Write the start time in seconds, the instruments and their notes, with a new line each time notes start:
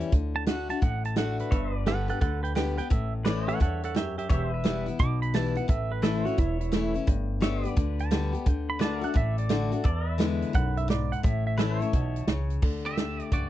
Already playing: steel-string acoustic guitar E3 G3 C#4 E4
0.01 closed hi-hat
0.12 upright bass D2, steel-string acoustic guitar D3, kick, closed hi-hat
0.36 pedal steel guitar A5
0.46 steel-string acoustic guitar D3 A3 D4 F#4, pedal steel guitar F#5, snare, closed hi-hat
0.69 steel-string acoustic guitar D4 F#4, pedal steel guitar A5, closed hi-hat
0.82 upright bass A1, steel-string acoustic guitar A2, pedal steel guitar F#5, kick, closed hi-hat
1.05 pedal steel guitar A5, closed hi-hat
1.16 steel-string acoustic guitar D3 A3 D4 F#4, pedal steel guitar F#5, snare, closed hi-hat
1.39 pedal steel guitar B4, closed hi-hat
1.51 upright bass G1, steel-string acoustic guitar G2, pedal steel guitar C#5 E5, kick, closed hi-hat
1.76 pedal steel guitar B4 D5
1.86 steel-string acoustic guitar D3 G3 B3 G4, pedal steel guitar A4 F#5, snare, closed hi-hat
2.08 steel-string acoustic guitar B3 G4, pedal steel guitar A4 F#5, closed hi-hat
2.21 upright bass D2, steel-string acoustic guitar D3, pedal steel guitar A4 F#5, kick, closed hi-hat
2.43 pedal steel guitar B4 G5, closed hi-hat
2.55 steel-string acoustic guitar D3 G3 B3 G4, pedal steel guitar B4 G5, snare, closed hi-hat
2.77 steel-string acoustic guitar B3 G4, pedal steel guitar B4 G5, closed hi-hat
2.90 upright bass A1, steel-string acoustic guitar A2, pedal steel guitar E5, kick, closed hi-hat
3.25 steel-string acoustic guitar E3 A3 C#4 E4, pedal steel guitar B4 D5, snare, closed hi-hat
3.48 pedal steel guitar A4 C#5 E5 F#5, closed hi-hat
3.60 upright bass E2, steel-string acoustic guitar G2, pedal steel guitar A4 F#5, kick, closed hi-hat
3.83 pedal steel guitar A4 F#5, closed hi-hat
3.95 steel-string acoustic guitar F#2, pedal steel guitar G4 E5, snare, closed hi-hat
4.18 pedal steel guitar G4 E5, closed hi-hat
4.29 upright bass E1, steel-string acoustic guitar E2, pedal steel guitar G4 C#5 E5, kick, closed hi-hat
4.54 pedal steel guitar B4 E5
4.64 steel-string acoustic guitar E3 G3 B3 E4, snare, closed hi-hat
4.86 steel-string acoustic guitar B3 E4, closed hi-hat
4.99 upright bass B1, steel-string acoustic guitar B2, pedal steel guitar D6, kick, closed hi-hat
5.22 pedal steel guitar B5, closed hi-hat
5.34 steel-string acoustic guitar E3 G3 B3 E4, pedal steel guitar A5, snare, closed hi-hat
5.55 steel-string acoustic guitar B3 E4, pedal steel guitar F#5, closed hi-hat
5.68 upright bass A1, steel-string acoustic guitar A2, pedal steel guitar E5, kick, closed hi-hat
5.92 pedal steel guitar B4
6.02 steel-string acoustic guitar E3 A3 C#4 E4, pedal steel guitar A4 B4 E5, snare, closed hi-hat
6.25 steel-string acoustic guitar C#4 E4, pedal steel guitar F#4 C#5, closed hi-hat
6.38 upright bass E1, steel-string acoustic guitar E2, pedal steel guitar E4, kick, closed hi-hat
6.61 pedal steel guitar E4, closed hi-hat
6.72 steel-string acoustic guitar E3 A3 C#4 E4, snare, closed hi-hat
6.94 steel-string acoustic guitar C#4 E4, closed hi-hat
7.07 upright bass G1, steel-string acoustic guitar G2, kick, closed hi-hat
7.41 steel-string acoustic guitar D3 G3 B3 G4, pedal steel guitar C#5 E5, snare, closed hi-hat
7.64 steel-string acoustic guitar B3 G4, pedal steel guitar B4, closed hi-hat
7.68 pedal steel guitar D5
7.76 upright bass D2, steel-string acoustic guitar D3, kick, closed hi-hat
7.99 pedal steel guitar A5, closed hi-hat
8.11 steel-string acoustic guitar D3 G3 B3 G4, snare, closed hi-hat
8.33 steel-string acoustic guitar B3 G4, closed hi-hat
8.46 upright bass D2, steel-string acoustic guitar D3, pedal steel guitar G5, kick, closed hi-hat
8.70 pedal steel guitar B5
8.79 steel-string acoustic guitar D3 A3 D4 F#4, pedal steel guitar B4 D5 A5, snare, closed hi-hat
9.01 steel-string acoustic guitar D4 F#4, pedal steel guitar A4 F#5, closed hi-hat
9.14 upright bass A1, steel-string acoustic guitar A2, pedal steel guitar E5, kick, closed hi-hat
9.38 pedal steel guitar D5, closed hi-hat
9.49 steel-string acoustic guitar D3 A3 D4 F#4, snare, closed hi-hat
9.72 steel-string acoustic guitar D4 F#4, closed hi-hat
9.84 steel-string acoustic guitar E2, upright bass E2, pedal steel guitar A4 D5, kick, closed hi-hat
10.09 pedal steel guitar B4 E5
10.18 steel-string acoustic guitar D3 G#3 B3 E4, snare, closed hi-hat
10.42 closed hi-hat
10.53 upright bass B1, steel-string acoustic guitar F#2, pedal steel guitar F#5, kick, closed hi-hat
10.77 pedal steel guitar E5, closed hi-hat
10.88 steel-string acoustic guitar G#2, pedal steel guitar D5, snare, closed hi-hat
11.12 pedal steel guitar F#5, closed hi-hat
11.23 upright bass A1, steel-string acoustic guitar A2, pedal steel guitar E5, kick, closed hi-hat
11.47 pedal steel guitar E5
11.57 steel-string acoustic guitar E3 A3 C#4 E4, pedal steel guitar B4 E5 A5, snare, closed hi-hat
11.80 steel-string acoustic guitar C#4 E4, pedal steel guitar C#5, closed hi-hat
11.93 upright bass B1, steel-string acoustic guitar B2, kick, closed hi-hat
12.16 closed hi-hat
12.28 upright bass C#2, steel-string acoustic guitar C#3, snare, closed hi-hat
12.50 closed hi-hat
12.62 upright bass D2, steel-string acoustic guitar D3, kick, crash
12.85 clean electric guitar G4 E5, closed hi-hat
12.97 steel-string acoustic guitar D3 A3 D4, snare, closed hi-hat
13.20 closed hi-hat
13.32 upright bass C#2, steel-string acoustic guitar G2, clean electric guitar F#4 D5, kick, closed hi-hat